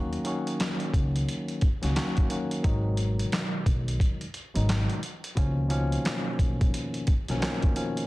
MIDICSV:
0, 0, Header, 1, 4, 480
1, 0, Start_track
1, 0, Key_signature, 5, "minor"
1, 0, Tempo, 681818
1, 1861, Time_signature, 4, 2, 24, 8
1, 5680, End_track
2, 0, Start_track
2, 0, Title_t, "Tine electric piano"
2, 0, Program_c, 0, 4
2, 0, Note_on_c, 0, 51, 93
2, 0, Note_on_c, 0, 54, 83
2, 0, Note_on_c, 0, 58, 84
2, 0, Note_on_c, 0, 61, 77
2, 0, Note_on_c, 0, 66, 98
2, 162, Note_off_c, 0, 51, 0
2, 164, Note_off_c, 0, 54, 0
2, 166, Note_off_c, 0, 58, 0
2, 168, Note_off_c, 0, 61, 0
2, 170, Note_off_c, 0, 66, 0
2, 170, Note_on_c, 0, 51, 97
2, 175, Note_on_c, 0, 54, 88
2, 179, Note_on_c, 0, 58, 80
2, 183, Note_on_c, 0, 61, 84
2, 188, Note_on_c, 0, 66, 102
2, 1177, Note_off_c, 0, 51, 0
2, 1179, Note_off_c, 0, 54, 0
2, 1182, Note_off_c, 0, 58, 0
2, 1183, Note_off_c, 0, 61, 0
2, 1186, Note_off_c, 0, 66, 0
2, 1277, Note_on_c, 0, 51, 85
2, 1281, Note_on_c, 0, 54, 85
2, 1286, Note_on_c, 0, 58, 86
2, 1290, Note_on_c, 0, 61, 88
2, 1294, Note_on_c, 0, 66, 100
2, 1364, Note_off_c, 0, 51, 0
2, 1369, Note_off_c, 0, 54, 0
2, 1373, Note_off_c, 0, 58, 0
2, 1373, Note_on_c, 0, 51, 77
2, 1377, Note_off_c, 0, 61, 0
2, 1377, Note_on_c, 0, 54, 71
2, 1381, Note_on_c, 0, 58, 70
2, 1382, Note_off_c, 0, 66, 0
2, 1386, Note_on_c, 0, 61, 70
2, 1390, Note_on_c, 0, 66, 86
2, 1602, Note_off_c, 0, 51, 0
2, 1604, Note_off_c, 0, 54, 0
2, 1606, Note_off_c, 0, 58, 0
2, 1609, Note_off_c, 0, 61, 0
2, 1611, Note_off_c, 0, 66, 0
2, 1613, Note_on_c, 0, 51, 78
2, 1617, Note_on_c, 0, 54, 68
2, 1622, Note_on_c, 0, 58, 67
2, 1626, Note_on_c, 0, 61, 71
2, 1630, Note_on_c, 0, 66, 82
2, 1842, Note_off_c, 0, 51, 0
2, 1844, Note_off_c, 0, 54, 0
2, 1847, Note_off_c, 0, 58, 0
2, 1847, Note_on_c, 0, 47, 86
2, 1848, Note_off_c, 0, 61, 0
2, 1851, Note_off_c, 0, 66, 0
2, 1852, Note_on_c, 0, 51, 86
2, 1856, Note_on_c, 0, 54, 89
2, 1860, Note_on_c, 0, 56, 89
2, 1865, Note_on_c, 0, 63, 95
2, 2981, Note_off_c, 0, 47, 0
2, 2983, Note_off_c, 0, 51, 0
2, 2985, Note_off_c, 0, 54, 0
2, 2987, Note_off_c, 0, 56, 0
2, 2989, Note_off_c, 0, 63, 0
2, 3196, Note_on_c, 0, 47, 96
2, 3200, Note_on_c, 0, 51, 88
2, 3204, Note_on_c, 0, 54, 88
2, 3208, Note_on_c, 0, 56, 91
2, 3214, Note_on_c, 0, 63, 99
2, 3512, Note_off_c, 0, 47, 0
2, 3514, Note_off_c, 0, 51, 0
2, 3516, Note_off_c, 0, 54, 0
2, 3518, Note_off_c, 0, 56, 0
2, 3521, Note_off_c, 0, 63, 0
2, 3770, Note_on_c, 0, 47, 93
2, 3774, Note_on_c, 0, 51, 84
2, 3779, Note_on_c, 0, 53, 90
2, 3783, Note_on_c, 0, 58, 94
2, 3788, Note_on_c, 0, 61, 105
2, 3993, Note_off_c, 0, 47, 0
2, 3997, Note_off_c, 0, 51, 0
2, 4002, Note_off_c, 0, 53, 0
2, 4002, Note_on_c, 0, 47, 90
2, 4006, Note_on_c, 0, 51, 88
2, 4007, Note_off_c, 0, 58, 0
2, 4009, Note_off_c, 0, 61, 0
2, 4010, Note_on_c, 0, 53, 84
2, 4014, Note_on_c, 0, 58, 84
2, 4019, Note_on_c, 0, 61, 102
2, 5013, Note_off_c, 0, 47, 0
2, 5015, Note_off_c, 0, 51, 0
2, 5017, Note_off_c, 0, 53, 0
2, 5019, Note_off_c, 0, 58, 0
2, 5021, Note_off_c, 0, 61, 0
2, 5129, Note_on_c, 0, 47, 92
2, 5134, Note_on_c, 0, 51, 90
2, 5138, Note_on_c, 0, 53, 86
2, 5143, Note_on_c, 0, 58, 85
2, 5147, Note_on_c, 0, 61, 108
2, 5200, Note_off_c, 0, 47, 0
2, 5204, Note_off_c, 0, 51, 0
2, 5208, Note_off_c, 0, 53, 0
2, 5208, Note_on_c, 0, 47, 74
2, 5212, Note_off_c, 0, 58, 0
2, 5212, Note_on_c, 0, 51, 68
2, 5217, Note_off_c, 0, 61, 0
2, 5217, Note_on_c, 0, 53, 69
2, 5221, Note_on_c, 0, 58, 72
2, 5225, Note_on_c, 0, 61, 92
2, 5440, Note_off_c, 0, 47, 0
2, 5442, Note_off_c, 0, 51, 0
2, 5444, Note_off_c, 0, 53, 0
2, 5446, Note_off_c, 0, 58, 0
2, 5448, Note_off_c, 0, 61, 0
2, 5450, Note_on_c, 0, 47, 71
2, 5455, Note_on_c, 0, 51, 71
2, 5459, Note_on_c, 0, 53, 70
2, 5463, Note_on_c, 0, 58, 70
2, 5467, Note_on_c, 0, 61, 90
2, 5680, Note_off_c, 0, 47, 0
2, 5680, Note_off_c, 0, 51, 0
2, 5680, Note_off_c, 0, 53, 0
2, 5680, Note_off_c, 0, 58, 0
2, 5680, Note_off_c, 0, 61, 0
2, 5680, End_track
3, 0, Start_track
3, 0, Title_t, "Upright bass"
3, 0, Program_c, 1, 32
3, 0, Note_on_c, 1, 39, 95
3, 107, Note_off_c, 1, 39, 0
3, 659, Note_on_c, 1, 37, 86
3, 863, Note_off_c, 1, 37, 0
3, 1288, Note_on_c, 1, 37, 86
3, 1366, Note_off_c, 1, 37, 0
3, 1860, Note_on_c, 1, 32, 104
3, 2267, Note_off_c, 1, 32, 0
3, 2578, Note_on_c, 1, 35, 92
3, 2782, Note_off_c, 1, 35, 0
3, 3207, Note_on_c, 1, 32, 87
3, 3411, Note_off_c, 1, 32, 0
3, 3781, Note_on_c, 1, 37, 104
3, 4187, Note_off_c, 1, 37, 0
3, 4499, Note_on_c, 1, 35, 91
3, 4703, Note_off_c, 1, 35, 0
3, 5131, Note_on_c, 1, 35, 89
3, 5208, Note_off_c, 1, 35, 0
3, 5680, End_track
4, 0, Start_track
4, 0, Title_t, "Drums"
4, 89, Note_on_c, 9, 42, 36
4, 160, Note_off_c, 9, 42, 0
4, 175, Note_on_c, 9, 42, 74
4, 245, Note_off_c, 9, 42, 0
4, 331, Note_on_c, 9, 42, 51
4, 402, Note_off_c, 9, 42, 0
4, 421, Note_on_c, 9, 42, 88
4, 426, Note_on_c, 9, 38, 121
4, 432, Note_on_c, 9, 39, 93
4, 492, Note_off_c, 9, 42, 0
4, 497, Note_off_c, 9, 38, 0
4, 503, Note_off_c, 9, 39, 0
4, 562, Note_on_c, 9, 42, 36
4, 633, Note_off_c, 9, 42, 0
4, 658, Note_on_c, 9, 36, 98
4, 662, Note_on_c, 9, 42, 77
4, 729, Note_off_c, 9, 36, 0
4, 732, Note_off_c, 9, 42, 0
4, 814, Note_on_c, 9, 42, 53
4, 884, Note_off_c, 9, 42, 0
4, 905, Note_on_c, 9, 42, 94
4, 975, Note_off_c, 9, 42, 0
4, 1045, Note_on_c, 9, 42, 35
4, 1115, Note_off_c, 9, 42, 0
4, 1136, Note_on_c, 9, 42, 65
4, 1141, Note_on_c, 9, 36, 99
4, 1206, Note_off_c, 9, 42, 0
4, 1212, Note_off_c, 9, 36, 0
4, 1286, Note_on_c, 9, 42, 57
4, 1295, Note_on_c, 9, 38, 38
4, 1357, Note_off_c, 9, 42, 0
4, 1366, Note_off_c, 9, 38, 0
4, 1381, Note_on_c, 9, 42, 88
4, 1383, Note_on_c, 9, 38, 120
4, 1389, Note_on_c, 9, 39, 96
4, 1452, Note_off_c, 9, 42, 0
4, 1454, Note_off_c, 9, 38, 0
4, 1460, Note_off_c, 9, 39, 0
4, 1526, Note_on_c, 9, 42, 36
4, 1533, Note_on_c, 9, 36, 79
4, 1596, Note_off_c, 9, 42, 0
4, 1603, Note_off_c, 9, 36, 0
4, 1619, Note_on_c, 9, 42, 73
4, 1690, Note_off_c, 9, 42, 0
4, 1769, Note_on_c, 9, 42, 58
4, 1839, Note_off_c, 9, 42, 0
4, 1860, Note_on_c, 9, 36, 110
4, 1860, Note_on_c, 9, 42, 87
4, 1930, Note_off_c, 9, 36, 0
4, 1930, Note_off_c, 9, 42, 0
4, 2093, Note_on_c, 9, 42, 74
4, 2163, Note_off_c, 9, 42, 0
4, 2249, Note_on_c, 9, 42, 51
4, 2319, Note_off_c, 9, 42, 0
4, 2340, Note_on_c, 9, 42, 86
4, 2344, Note_on_c, 9, 38, 118
4, 2350, Note_on_c, 9, 39, 94
4, 2410, Note_off_c, 9, 42, 0
4, 2415, Note_off_c, 9, 38, 0
4, 2421, Note_off_c, 9, 39, 0
4, 2578, Note_on_c, 9, 36, 99
4, 2580, Note_on_c, 9, 42, 77
4, 2648, Note_off_c, 9, 36, 0
4, 2651, Note_off_c, 9, 42, 0
4, 2732, Note_on_c, 9, 42, 55
4, 2803, Note_off_c, 9, 42, 0
4, 2816, Note_on_c, 9, 36, 97
4, 2823, Note_on_c, 9, 42, 93
4, 2887, Note_off_c, 9, 36, 0
4, 2894, Note_off_c, 9, 42, 0
4, 2964, Note_on_c, 9, 42, 37
4, 3034, Note_off_c, 9, 42, 0
4, 3055, Note_on_c, 9, 42, 67
4, 3126, Note_off_c, 9, 42, 0
4, 3206, Note_on_c, 9, 42, 59
4, 3277, Note_off_c, 9, 42, 0
4, 3302, Note_on_c, 9, 42, 90
4, 3304, Note_on_c, 9, 38, 113
4, 3310, Note_on_c, 9, 39, 93
4, 3372, Note_off_c, 9, 42, 0
4, 3374, Note_off_c, 9, 38, 0
4, 3380, Note_off_c, 9, 39, 0
4, 3446, Note_on_c, 9, 42, 36
4, 3516, Note_off_c, 9, 42, 0
4, 3540, Note_on_c, 9, 42, 71
4, 3611, Note_off_c, 9, 42, 0
4, 3689, Note_on_c, 9, 42, 57
4, 3759, Note_off_c, 9, 42, 0
4, 3780, Note_on_c, 9, 36, 109
4, 3780, Note_on_c, 9, 42, 86
4, 3851, Note_off_c, 9, 36, 0
4, 3851, Note_off_c, 9, 42, 0
4, 4013, Note_on_c, 9, 42, 74
4, 4084, Note_off_c, 9, 42, 0
4, 4170, Note_on_c, 9, 42, 53
4, 4240, Note_off_c, 9, 42, 0
4, 4261, Note_on_c, 9, 42, 84
4, 4265, Note_on_c, 9, 38, 122
4, 4271, Note_on_c, 9, 39, 96
4, 4331, Note_off_c, 9, 42, 0
4, 4336, Note_off_c, 9, 38, 0
4, 4342, Note_off_c, 9, 39, 0
4, 4499, Note_on_c, 9, 36, 101
4, 4502, Note_on_c, 9, 42, 78
4, 4569, Note_off_c, 9, 36, 0
4, 4572, Note_off_c, 9, 42, 0
4, 4653, Note_on_c, 9, 42, 53
4, 4654, Note_on_c, 9, 36, 98
4, 4724, Note_off_c, 9, 36, 0
4, 4724, Note_off_c, 9, 42, 0
4, 4744, Note_on_c, 9, 42, 94
4, 4815, Note_off_c, 9, 42, 0
4, 4886, Note_on_c, 9, 42, 37
4, 4956, Note_off_c, 9, 42, 0
4, 4977, Note_on_c, 9, 42, 63
4, 4982, Note_on_c, 9, 36, 95
4, 5047, Note_off_c, 9, 42, 0
4, 5053, Note_off_c, 9, 36, 0
4, 5128, Note_on_c, 9, 42, 57
4, 5137, Note_on_c, 9, 38, 39
4, 5199, Note_off_c, 9, 42, 0
4, 5208, Note_off_c, 9, 38, 0
4, 5224, Note_on_c, 9, 42, 91
4, 5227, Note_on_c, 9, 38, 120
4, 5233, Note_on_c, 9, 39, 92
4, 5295, Note_off_c, 9, 42, 0
4, 5297, Note_off_c, 9, 38, 0
4, 5303, Note_off_c, 9, 39, 0
4, 5368, Note_on_c, 9, 42, 36
4, 5374, Note_on_c, 9, 36, 81
4, 5438, Note_off_c, 9, 42, 0
4, 5445, Note_off_c, 9, 36, 0
4, 5463, Note_on_c, 9, 42, 72
4, 5533, Note_off_c, 9, 42, 0
4, 5612, Note_on_c, 9, 42, 59
4, 5680, Note_off_c, 9, 42, 0
4, 5680, End_track
0, 0, End_of_file